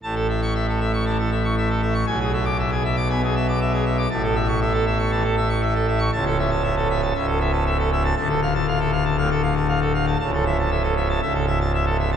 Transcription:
<<
  \new Staff \with { instrumentName = "Pipe organ" } { \time 4/4 \key a \major \tempo 4 = 118 a''16 a'16 e''16 cis'''16 e''16 a'16 e''16 cis'''16 a''16 a'16 e''16 cis'''16 e''16 a'16 e''16 cis'''16 | gis''16 gis'16 e''16 d'''16 e''16 gis'16 e''16 d'''16 gis''16 gis'16 e''16 d'''16 e''16 gis'16 e''16 d'''16 | a''16 a'16 e''16 cis'''16 e''16 a'16 e''16 cis'''16 a''16 a'16 e''16 cis'''16 e''16 a'16 e''16 cis'''16 | a''16 a'16 e''16 a''16 e''16 a'16 e''16 a''16 e''16 a'16 e''16 a''16 e''16 a'16 e''16 a''16 |
a''16 a'16 f''16 a''16 f''16 a'16 f''16 a''16 f''16 a'16 f''16 a''16 f''16 a'16 f''16 a''16 | a''16 a'16 e''16 a''16 e''16 a'16 e''16 a''16 e''16 a'16 e''16 a''16 e''16 a'16 e''16 a''16 | }
  \new Staff \with { instrumentName = "Pipe organ" } { \clef bass \time 4/4 \key a \major << { a,2 e16 r4. r16 | b,2 b16 r4. r16 | a,2 e16 r4. r16 | cis,2 cis,2 |
d,2 a,16 r4. r16 | cis,2 cis,2 | } \\ { a,,1 | b,,1 | a,,1 | cis,,2 cis,,2 |
d,,1 | cis,,2 cis,,2 | } >> }
>>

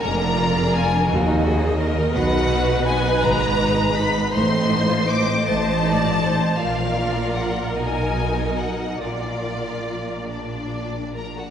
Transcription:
<<
  \new Staff \with { instrumentName = "Violin section" } { \time 6/8 \key dis \minor \tempo 4. = 53 ais''4 aes''8 r4. | \key bes \phrygian fis''4 aes''8 bes''4 ces'''8 | c'''4 d'''8 a''4. | f''4 ges''8 aes''4 fis''8 |
d''4. d''4 bes''16 ges''16 | }
  \new Staff \with { instrumentName = "Viola section" } { \time 6/8 \key dis \minor ais'4. fis'8 gis'8 ais'8 | \key bes \phrygian b'2. | c''4. c''8 d''8 c''8 | bes'2. |
d''2~ d''16 r8. | }
  \new Staff \with { instrumentName = "Violin section" } { \time 6/8 \key dis \minor << { d''4. dis''4.~ | \key bes \phrygian dis''2. | ees''2. | d''4. dis''4. |
bes'4. d'4 bes'16 ges'16 | } \\ { aes16 d'16 f'16 aes'16 f'16 d'16 ais16 dis'16 fis'16 dis'16 ais16 dis'16 | b16 dis'16 fis'16 dis'16 b16 dis'16 aes16 ces'16 ees'16 aes'16 ees'16 ces'16 | a16 c'16 ees'16 f'16 ees'16 c'16 a16 c'16 ees'16 f'16 ees'16 c'16 | f'4. dis'4. |
f'4. r4. | } >> }
  \new Staff \with { instrumentName = "Cello section" } { \clef bass \time 6/8 \key dis \minor f,4. dis,4. | \key bes \phrygian b,4. aes,4. | a,4. a,4. | bes,4. b,4. |
bes,2~ bes,8. r16 | }
  \new Staff \with { instrumentName = "Double bass section" } { \clef bass \time 6/8 \key dis \minor f,,4. dis,4. | \key bes \phrygian b,,4. aes,,4. | a,,4. a,,4. | bes,,4. b,,4. |
bes,,2~ bes,,8. r16 | }
>>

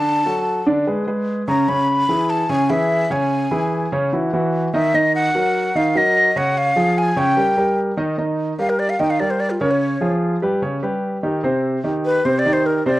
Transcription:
<<
  \new Staff \with { instrumentName = "Flute" } { \time 4/4 \key ees \mixolydian \tempo 4 = 148 a''4. r2 bes''8 | ces'''4. a''8 aes''8 fes''4 aes''8~ | aes''4. r2 e''8 | ees''8 ges''4. f''8 ees''4 ges''8 |
f''4 aes''8 g''4. r4 | \key ees \major r4 f''16 bes'16 d''16 f''16 g''16 f''16 d''16 c''16 d''16 f'16 bes'16 des''16~ | des''8. r2. r16 | r4. ces''8 \tuplet 3/2 { c''8 d''8 c''8 } bes'8 d''8 | }
  \new Staff \with { instrumentName = "Grand piano" } { \time 4/4 \key ees \mixolydian <d d' d''>8 <fis fis' a'>4 <d d' d''>8 <aes aes' ces''>8 <aes aes' ces''>4 <des des' des''>8 | <des des' des''>4 <fes fes' aes'>4 <des des' des''>8 <fes fes' aes'>4 <des des' des''>8~ | <des des' des''>8 <fes fes' aes'>4 <des des' des''>8 <e e' fis'>8 <e e' fis'>4 <ees ees' ees''>8 | <ees ees' ees''>4 <ges ges' bes'>4 <ees ees' ees''>8 <ges ges' bes'>4 <des des' des''>8~ |
<des des' des''>8 <f f' aes'>4 <des des' des''>8 <g g' bes'>8 <g g' bes'>4 <ees ees' ees''>8 | \key ees \major <ees ees' ees''>4 <g g' bes'>4 <ees ees' ees''>8 <g g' bes'>4 <des des' des''>8~ | <des des' des''>8 <f f' aes'>4 <g g' ces''>8 <des des' des''>8 <g g' b'>4 <ees ees' g'>8 | <c c' c''>4 <ees ees' g'>4 <c c' c''>8 <ees ees' g'>4 <c c' c''>8 | }
>>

